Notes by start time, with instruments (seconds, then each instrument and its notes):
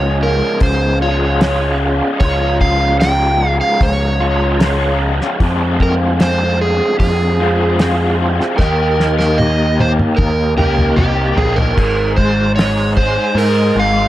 Already playing: picked electric bass C#2, overdriven electric guitar C#3 F3 G#3 C#4 F4, tonewheel organ C#4 G#4 F5 G#5, electric slide guitar C#5
0.23 electric slide guitar A#4
0.60 picked electric bass C#2, electric slide guitar C5, kick, open hi-hat
1.02 overdriven electric guitar C#3 F3 G#3 C#4 F4, electric slide guitar C#5
1.41 overdriven electric guitar C#3 F3 G#3 C#4 F4, snare, open hi-hat
2.20 picked electric bass C#2, overdriven electric guitar C#3 F3 G#3 C#4, electric slide guitar C#5, tonewheel organ A#5, kick, open hi-hat
2.24 overdriven electric guitar F4
2.61 electric slide guitar F5, kick
3.00 electric slide guitar G5, snare, open hi-hat
3.47 electric slide guitar F5
3.61 electric slide guitar F5
3.81 picked electric bass C#2, electric slide guitar C#5, kick, open hi-hat
4.20 overdriven electric guitar C#3 F3 G#3 C#4 F4
4.60 overdriven electric guitar C#3 F3 G#3 C#4 F4, snare, open hi-hat
5.21 snare
5.40 picked electric bass F2, overdriven electric guitar F2 C3 F3 G#3 C4 F4, tonewheel organ C5 F5 G#5, kick, open hi-hat
5.80 electric slide guitar A#4, kick
6.20 electric slide guitar C5, snare, open hi-hat
6.61 electric slide guitar G#4
6.99 picked electric bass F2, electric slide guitar G#4, kick, open hi-hat
7.39 overdriven electric guitar F2 C3 F3 G#3 C4 F4
7.79 overdriven electric guitar F2 C3 F3 G#3 C4 F4, snare, open hi-hat
8.41 snare
8.56 picked electric bass D#2, overdriven electric guitar D#3 A#3, tonewheel organ G4 A#4 D#5 G5, electric slide guitar A#4, kick
8.60 overdriven electric guitar D#4 G4, snare
9.00 snare
9.18 electric slide guitar A#4, snare
9.38 electric slide guitar D#5, high tom
9.80 electric slide guitar C5, high tom
9.99 mid tom
10.17 picked electric bass D#2, electric slide guitar A#4, kick, mid tom
10.56 picked electric bass C#2, overdriven electric guitar D#4 G4, electric slide guitar A#4, mid tom
10.60 overdriven electric guitar D#3 A#3
10.79 mid tom
10.96 picked electric bass C2, overdriven electric guitar D#3 A#3, electric slide guitar G4, mid tom
11.00 overdriven electric guitar D#4 G4
11.36 picked electric bass A#1, electric slide guitar G#4, floor tom
11.56 electric slide guitar A#4, floor tom
11.76 picked electric bass G#1, overdriven electric guitar G#2, tonewheel organ G#3 D#4 G#4 C6, kick, crash
12.16 overdriven electric guitar G#3, electric slide guitar C5, kick
12.56 overdriven electric guitar D#4, electric slide guitar C#5, snare, open hi-hat
12.97 overdriven electric guitar G#4, electric slide guitar C5, kick
13.35 picked electric bass G#2, overdriven electric guitar D#4, electric slide guitar A#4, open hi-hat
13.75 picked electric bass G#1, overdriven electric guitar G#3
13.80 electric slide guitar F5